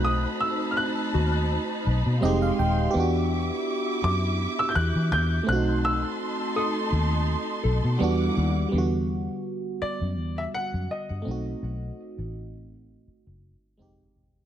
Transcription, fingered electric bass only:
X:1
M:4/4
L:1/16
Q:"Swing 16ths" 1/4=83
K:Em
V:1 name="Fingered electric bass" clef=bass
B,,,2 z4 ^D,,3 z B,,, B,, =F,,,2 _E,,,2 | E,,4 z2 F,,3 z E,, E, E,,2 B,,,2- | B,,,2 z4 ^D,,3 z B,,, B,, E,,2 D,,2 | E,,4 z3 F,, E,,2 z F,, z G,, B,,,2 |
B,,,2 z A,,,4- A,,, z F,,,2 z =F,,,2 E,,,2 |]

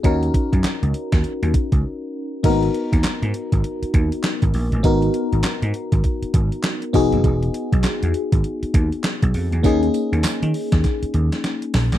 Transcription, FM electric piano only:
X:1
M:4/4
L:1/8
Q:"Swing 16ths" 1/4=100
K:G#m
V:1 name="FM electric piano"
[CDFA]8 | [A,B,DFA]8 | [B,DFA]6- [B,DFA] [B,DFG]- | [B,DFG]6- [B,DFG] z |
[A,CDG]8 |]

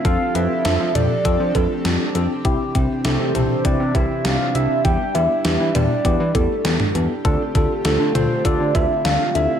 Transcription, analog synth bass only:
X:1
M:4/4
L:1/16
Q:1/4=100
K:C
V:1 name="Analog synth bass" clef=bass
F,, z F,, z F,, F, F,, z F,, F, F,, z F,, z F,, z | C,, z C,, z C,, C, C,, z C,, C, C,, z C,, z C,, z | E,, z E,, z E,, E, E,, z E,, E, E,, z E,, z E,, z | D,, z D,, z D,, D, D,, z D,, D, D,, z D,, z D,, z |]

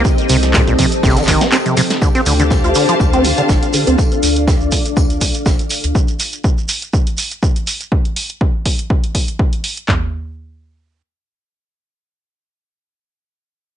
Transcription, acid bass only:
X:1
M:4/4
L:1/16
Q:"Swing 16ths" 1/4=122
K:Dphr
V:1 name="Acid bass" clef=bass
z2 C, z B,, B,, C, z C, E, E, C C C, C, z | D, C D, D, z F D, F, z C D, D, z2 D, C | z16 | z16 |
z16 | z16 | z16 |]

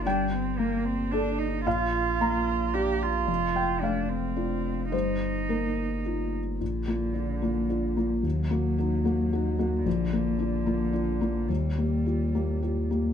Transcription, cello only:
X:1
M:3/4
L:1/8
Q:1/4=110
K:Bb
V:1 name="Cello"
D C B, C D E | F4 G F- | F2 D C3 | E4- E z |
D,6 | _G,6 | D,6 | G,4- G, z |]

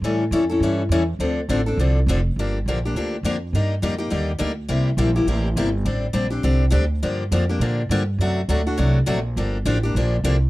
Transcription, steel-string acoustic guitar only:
X:1
M:4/4
L:1/8
Q:"Swing" 1/4=206
K:Dm
V:1 name="Steel-string acoustic guitar"
[E,G,^CEA] z [E,G,CEA] [CEA] [E,G,CEA] z [E,G,CEA] z | [D,F,CDA] z [D,F,CDA] [CDA] [D,F,CDA] z [D,F,CDA] z | [K:Gm] [D,F,B,DG] z [D,F,B,DG] [B,DG] [D,F,B,DG] z [D,F,B,DG] z | [D,G,B,EG] z [D,G,B,EG] [B,EG] [D,G,B,EG] z [D,G,B,EG] z |
[C,G,B,=EG] z [C,G,B,EG] [B,EG] [C,G,B,EG] z [C,G,B,EG] z | [D,G,CDG] z [D,G,CDG] [CDG] [D,G,CDG] z [D,G,CDG] z | [D,F,B,DG] z [D,F,B,DG] [B,DG] [D,F,B,DG] z [D,F,B,DG] z | [C,^F,A,D^F] z [C,F,A,DF] [A,DF] [C,F,A,DF] z [C,F,A,DF] z |
[D,F,B,DG] z [D,F,B,DG] [B,DG] [D,F,B,DG] z [D,F,B,DG] z |]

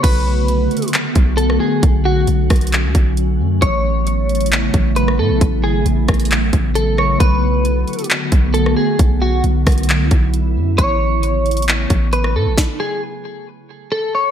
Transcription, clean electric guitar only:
X:1
M:4/4
L:1/8
Q:1/4=134
K:Bm
V:1 name="Clean electric guitar"
B4 z2 A ^G | z F z6 | c4 z2 B A | z ^G z4 A c |
B4 z2 A ^G | z F z6 | c4 z2 B A | z ^G z4 A c |]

